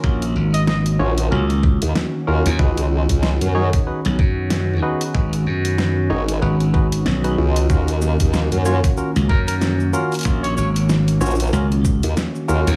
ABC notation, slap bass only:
X:1
M:4/4
L:1/16
Q:"Swing 16ths" 1/4=94
K:Ebm
V:1 name="Slap bass" clef=bass
B,,,2 A,,,4 z2 D,,3 z4 E,, | z8 z C,, G,,4 z2 | A,,,2 G,,4 z2 A,,,4 C,,2 z2 | z8 z D,, G,,4 z2 |
B,,,2 A,,,4 z2 D,,3 z4 E,, |]